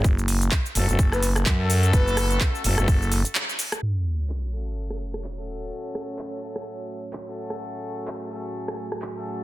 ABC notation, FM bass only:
X:1
M:4/4
L:1/16
Q:"Swing 16ths" 1/4=127
K:F#m
V:1 name="FM bass" clef=bass
F,,,4 z2 F,,, F,,, F,,,4 F,,4 | F,,,4 z2 F,,, F,,, F,,,3 z4 z | z16 | z16 |
z16 |]